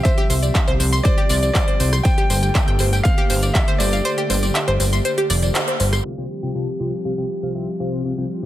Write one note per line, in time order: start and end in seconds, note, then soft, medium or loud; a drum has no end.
0.00 2.01 F3 medium
0.00 2.01 G3 medium
0.00 2.01 C4 medium
0.00 2.01 G4 medium
0.00 0.75 E5 loud
0.05 0.10 C5 loud
0.05 kick loud
0.05 closed hi-hat medium
0.05 tambourine soft
0.18 0.22 G4 loud
0.18 closed hi-hat soft
0.30 0.51 C2 loud
0.30 0.35 C5 medium
0.30 open hi-hat loud
0.30 tambourine medium
0.43 0.45 D5 medium
0.43 closed hi-hat soft
0.43 tambourine soft
0.54 0.58 E5 loud
0.54 kick loud
0.54 clap loud
0.54 closed hi-hat medium
0.54 tambourine soft
0.68 0.78 C2 medium
0.68 0.70 C5 loud
0.68 closed hi-hat soft
0.80 1.01 C2 loud
0.80 0.85 C5 medium
0.80 open hi-hat loud
0.80 tambourine medium
0.92 0.95 C6 loud
0.92 closed hi-hat soft
0.92 tambourine soft
1.03 1.10 C5 loud
1.03 1.51 D5 medium
1.03 kick loud
1.03 closed hi-hat medium
1.03 tambourine soft
1.18 1.22 G4 loud
1.18 closed hi-hat soft
1.29 1.51 C2 loud
1.29 1.35 D5 loud
1.29 open hi-hat loud
1.29 tambourine medium
1.43 1.45 D5 medium
1.43 closed hi-hat soft
1.43 tambourine medium
1.53 1.60 C5 medium
1.53 1.89 D5 medium
1.53 kick loud
1.53 clap loud
1.53 closed hi-hat medium
1.53 tambourine soft
1.68 1.71 C5 medium
1.68 closed hi-hat soft
1.80 2.01 C2 medium
1.80 1.85 C5 medium
1.80 open hi-hat loud
1.80 tambourine medium
1.93 1.96 C6 loud
1.93 cross-stick medium
1.93 closed hi-hat soft
1.93 tambourine soft
2.03 6.01 D3 medium
2.03 6.01 A3 medium
2.03 6.01 A#3 medium
2.03 6.01 G4 medium
2.03 2.08 C5 medium
2.03 3.07 G5 loud
2.03 kick loud
2.03 closed hi-hat medium
2.03 tambourine soft
2.18 2.22 G4 loud
2.18 closed hi-hat soft
2.30 2.51 G1 loud
2.30 2.35 C5 medium
2.30 open hi-hat loud
2.30 tambourine medium
2.43 2.46 G5 medium
2.43 closed hi-hat soft
2.43 tambourine medium
2.55 2.58 E5 loud
2.55 kick loud
2.55 clap loud
2.55 closed hi-hat medium
2.55 tambourine soft
2.68 2.78 G1 medium
2.68 2.71 G5 medium
2.68 closed hi-hat soft
2.79 3.01 G1 loud
2.79 2.85 C5 medium
2.79 cross-stick medium
2.79 open hi-hat loud
2.79 tambourine medium
2.93 2.96 G5 medium
2.93 closed hi-hat soft
2.93 tambourine medium
3.03 3.08 C4 medium
3.03 3.51 F5 loud
3.03 kick loud
3.03 closed hi-hat medium
3.03 tambourine soft
3.18 3.22 G4 loud
3.18 closed hi-hat soft
3.30 3.51 G1 loud
3.30 3.35 C5 medium
3.30 open hi-hat loud
3.30 tambourine loud
3.42 3.46 D5 medium
3.42 closed hi-hat soft
3.42 tambourine medium
3.53 3.80 E5 medium
3.53 3.58 E5 loud
3.53 kick loud
3.53 clap loud
3.53 closed hi-hat medium
3.53 tambourine soft
3.68 3.71 C5 loud
3.68 closed hi-hat soft
3.78 4.01 G1 loud
3.78 3.85 C5 medium
3.78 5.50 D5 medium
3.78 open hi-hat loud
3.78 tambourine medium
3.93 3.96 F5 medium
3.93 closed hi-hat soft
3.93 tambourine medium
4.05 4.10 C5 loud
4.05 closed hi-hat medium
4.05 tambourine soft
4.18 4.22 G4 loud
4.18 closed hi-hat soft
4.30 4.51 G1 loud
4.30 4.35 C5 medium
4.30 open hi-hat loud
4.30 tambourine medium
4.43 4.46 D5 medium
4.43 closed hi-hat soft
4.43 tambourine medium
4.55 4.58 E5 loud
4.55 clap loud
4.55 closed hi-hat medium
4.55 tambourine soft
4.68 4.78 G1 medium
4.68 4.71 C5 loud
4.68 closed hi-hat soft
4.80 5.01 G1 loud
4.80 4.85 C5 medium
4.80 open hi-hat loud
4.80 tambourine medium
4.93 4.96 C6 loud
4.93 closed hi-hat soft
4.93 tambourine soft
5.05 5.10 C5 loud
5.05 closed hi-hat medium
5.05 tambourine soft
5.18 5.22 G4 loud
5.18 closed hi-hat soft
5.30 5.51 F1 loud
5.30 5.35 D5 loud
5.30 open hi-hat loud
5.30 tambourine medium
5.42 5.46 D5 medium
5.42 closed hi-hat soft
5.42 tambourine medium
5.55 5.60 C5 medium
5.55 clap loud
5.55 closed hi-hat medium
5.55 tambourine soft
5.68 5.70 C5 medium
5.68 closed hi-hat soft
5.80 6.01 G1 loud
5.80 5.85 C5 medium
5.80 open hi-hat loud
5.80 tambourine medium
5.93 5.95 C6 loud
5.93 cross-stick medium
5.93 closed hi-hat soft
5.93 tambourine medium
6.05 6.12 C3 medium
6.05 8.45 F3 medium
6.05 8.45 G3 medium
6.05 8.45 C4 medium
6.05 6.12 C4 medium
6.05 6.12 F4 medium
6.05 8.03 G4 medium
6.05 6.12 G4 medium
6.05 6.12 F5 medium
6.18 6.25 C3 medium
6.18 6.25 C4 medium
6.18 6.25 F4 medium
6.18 6.25 G4 medium
6.18 6.25 G5 medium
6.43 6.50 C3 loud
6.43 6.50 C4 medium
6.43 6.50 F4 medium
6.43 6.50 G4 medium
6.43 6.50 G5 loud
6.55 6.67 C3 medium
6.55 6.67 C4 medium
6.55 6.67 F4 medium
6.55 6.67 G4 medium
6.55 6.67 A5 loud
6.80 6.92 C3 medium
6.80 6.92 C4 medium
6.80 6.92 F4 medium
6.80 6.92 G4 medium
6.80 6.92 F5 loud
7.05 7.12 C3 medium
7.05 7.12 C4 medium
7.05 7.12 F4 medium
7.05 7.12 G4 medium
7.05 7.12 F5 medium
7.18 7.25 C3 medium
7.18 7.25 C4 medium
7.18 7.25 F4 medium
7.18 7.25 G4 medium
7.18 7.25 F5 medium
7.43 7.53 C3 medium
7.43 7.53 C4 medium
7.43 7.53 F4 medium
7.43 7.53 G4 medium
7.43 7.53 F5 medium
7.55 7.67 C3 medium
7.55 7.67 C4 medium
7.55 7.67 F4 medium
7.55 7.67 G4 medium
7.55 7.67 E5 medium
7.80 8.02 C3 medium
7.80 8.02 C4 medium
7.80 8.02 F4 medium
7.80 8.02 G4 medium
7.80 8.02 F5 loud
8.05 8.12 C3 medium
8.05 8.12 C4 medium
8.05 8.45 F4 medium
8.05 8.12 F4 medium
8.05 8.12 G4 medium
8.05 8.12 F5 medium
8.18 8.25 C3 medium
8.18 8.25 C4 medium
8.18 8.25 F4 medium
8.18 8.25 G4 medium
8.18 8.25 G5 medium